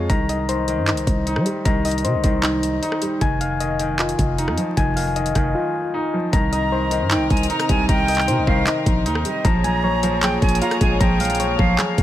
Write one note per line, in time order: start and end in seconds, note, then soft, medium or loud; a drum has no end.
0.00 0.12 F3 loud
0.00 0.12 G#3 medium
0.00 0.12 F4 loud
0.10 0.79 C2 loud
0.10 0.28 D#3 medium
0.10 1.27 A#5 loud
0.10 kick loud
0.10 closed hi-hat medium
0.29 0.47 D#3 medium
0.29 1.46 D#5 medium
0.29 closed hi-hat medium
0.49 0.67 D#3 medium
0.49 1.66 C5 medium
0.49 closed hi-hat medium
0.68 0.86 D#3 medium
0.68 closed hi-hat medium
0.78 0.94 G2 loud
0.88 1.64 D#3 medium
0.88 2.04 D#4 medium
0.88 clap loud
0.88 closed hi-hat soft
0.92 1.06 C2 loud
0.97 closed hi-hat medium
1.07 1.38 C2 loud
1.07 kick medium
1.07 closed hi-hat medium
1.27 2.24 D#4 medium
1.27 closed hi-hat medium
1.36 1.46 G3 loud
1.36 cross-stick loud
1.46 2.43 G3 medium
1.46 closed hi-hat medium
1.65 2.06 C2 loud
1.65 1.83 D#3 medium
1.65 2.82 A#5 loud
1.65 kick loud
1.65 closed hi-hat medium
1.85 2.03 D#3 medium
1.85 3.02 D#5 medium
1.85 closed hi-hat medium
1.85 open hi-hat medium
1.91 closed hi-hat medium
1.98 closed hi-hat medium
2.04 2.16 C3 loud
2.04 2.22 D#3 medium
2.04 3.21 C5 medium
2.04 closed hi-hat medium
2.14 2.23 C2 medium
2.24 2.80 C2 loud
2.24 2.42 D#3 medium
2.24 kick medium
2.24 closed hi-hat medium
2.43 3.20 D#3 medium
2.43 3.21 D#4 medium
2.43 clap loud
2.43 closed hi-hat medium
2.63 closed hi-hat medium
2.82 3.21 D#4 medium
2.82 closed hi-hat medium
2.92 cross-stick loud
3.02 3.21 G3 medium
3.02 closed hi-hat medium
3.21 4.15 F1 loud
3.21 3.39 D#3 medium
3.21 4.38 G#5 loud
3.21 kick loud
3.21 closed hi-hat medium
3.41 3.59 D#3 medium
3.41 4.58 F5 loud
3.41 closed hi-hat medium
3.60 3.78 D#3 medium
3.60 4.77 D#5 medium
3.60 closed hi-hat medium
3.80 3.98 D#3 medium
3.80 closed hi-hat medium
3.99 4.76 D#3 medium
3.99 5.16 F4 medium
3.99 clap loud
3.99 closed hi-hat soft
4.09 closed hi-hat medium
4.19 4.49 F1 loud
4.19 kick medium
4.19 closed hi-hat medium
4.38 5.36 D#4 medium
4.38 closed hi-hat medium
4.48 4.57 F2 loud
4.48 cross-stick loud
4.57 5.55 F3 medium
4.57 closed hi-hat medium
4.77 5.33 F1 loud
4.77 4.95 D#3 medium
4.77 5.94 G#5 loud
4.77 kick loud
4.77 closed hi-hat medium
4.96 5.15 D#3 medium
4.96 6.13 F5 medium
4.96 open hi-hat medium
5.16 5.34 D#3 medium
5.16 6.33 D#5 medium
5.16 closed hi-hat medium
5.26 closed hi-hat medium
5.35 5.54 F1 loud
5.35 5.54 D#3 loud
5.35 kick medium
5.35 cross-stick medium
5.35 closed hi-hat medium
5.55 6.32 D#3 medium
5.55 6.33 F4 loud
5.94 6.33 D#4 medium
6.14 6.33 F3 medium
6.33 7.03 C2 loud
6.33 9.42 C3 medium
6.33 6.51 D#3 medium
6.33 9.42 C4 medium
6.33 9.42 D#4 medium
6.33 9.42 A#4 medium
6.33 7.50 A#5 loud
6.33 kick loud
6.33 closed hi-hat medium
6.52 6.70 D#3 medium
6.52 7.69 D#5 medium
6.52 7.08 A#5 medium
6.52 closed hi-hat medium
6.72 6.90 D#3 medium
6.72 7.89 C5 medium
6.91 7.09 D#3 loud
6.91 closed hi-hat medium
7.01 7.17 G2 loud
7.11 7.87 D#3 medium
7.11 8.28 D#4 medium
7.11 7.30 G5 medium
7.11 clap loud
7.11 closed hi-hat medium
7.16 7.30 C2 loud
7.30 7.49 C2 loud
7.30 7.49 G#5 medium
7.30 kick medium
7.30 closed hi-hat soft
7.37 closed hi-hat medium
7.43 closed hi-hat medium
7.50 8.47 D#4 loud
7.50 7.68 A#5 medium
7.50 closed hi-hat medium
7.60 cross-stick loud
7.60 closed hi-hat medium
7.69 7.88 C2 loud
7.69 8.67 G3 medium
7.69 7.88 G#5 medium
7.69 kick loud
7.69 closed hi-hat medium
7.89 8.29 C2 loud
7.89 8.07 D#3 medium
7.89 8.44 G5 loud
7.89 9.06 A#5 loud
7.89 kick loud
7.89 closed hi-hat medium
8.08 8.26 D#3 medium
8.08 9.25 D#5 medium
8.08 closed hi-hat medium
8.08 open hi-hat medium
8.15 clap medium
8.15 closed hi-hat medium
8.21 closed hi-hat soft
8.28 8.39 C3 loud
8.28 8.46 D#3 medium
8.28 9.45 C5 medium
8.28 closed hi-hat medium
8.38 8.47 C2 loud
8.47 8.66 C2 loud
8.47 8.65 D#3 loud
8.47 8.66 F5 medium
8.47 kick medium
8.67 9.45 D#3 medium
8.67 9.45 D#4 medium
8.67 clap loud
8.67 closed hi-hat medium
8.86 9.07 A#1 loud
8.86 kick medium
8.86 closed hi-hat medium
9.06 9.24 D#2 loud
9.06 9.45 D#4 loud
9.06 closed hi-hat medium
9.15 cross-stick loud
9.25 9.45 G3 medium
9.25 9.44 D#5 medium
9.25 closed hi-hat medium
9.45 10.38 A#1 loud
9.45 9.63 F3 loud
9.45 12.03 A#3 medium
9.45 12.03 F4 medium
9.45 12.03 G#4 medium
9.45 12.03 C#5 medium
9.45 10.62 A#5 loud
9.45 kick loud
9.45 closed hi-hat medium
9.64 9.82 F3 medium
9.64 10.81 G#5 medium
9.64 10.19 A#5 medium
9.64 closed hi-hat medium
9.84 10.02 F3 medium
9.84 11.01 C#5 medium
10.03 10.21 F3 loud
10.03 closed hi-hat medium
10.22 10.99 F3 medium
10.22 11.40 G#4 medium
10.22 10.41 G5 loud
10.22 clap loud
10.22 closed hi-hat medium
10.42 10.61 A#1 loud
10.42 10.61 G#5 medium
10.42 kick medium
10.42 closed hi-hat soft
10.49 closed hi-hat medium
10.55 closed hi-hat medium
10.62 11.59 F4 loud
10.62 10.80 A#5 medium
10.62 closed hi-hat medium
10.71 cross-stick loud
10.71 closed hi-hat medium
10.81 11.00 A#1 loud
10.81 11.78 G#3 medium
10.81 11.00 G#5 medium
10.81 kick loud
10.81 closed hi-hat medium
11.00 11.57 A#1 loud
11.00 11.19 F3 loud
11.00 11.56 G5 loud
11.00 12.03 A#5 loud
11.00 kick loud
11.00 closed hi-hat medium
11.20 11.38 F3 medium
11.20 12.03 F5 medium
11.20 closed hi-hat medium
11.20 open hi-hat medium
11.25 closed hi-hat medium
11.30 closed hi-hat medium
11.35 closed hi-hat medium
11.39 11.57 F3 medium
11.39 12.03 C#5 medium
11.39 closed hi-hat medium
11.59 11.78 A#1 loud
11.59 11.77 F3 loud
11.59 11.77 F5 medium
11.59 kick medium
11.78 12.03 F3 medium
11.78 12.03 G#4 medium
11.78 clap loud
11.78 closed hi-hat medium
11.98 12.03 A#1 loud
11.98 kick medium
11.98 closed hi-hat medium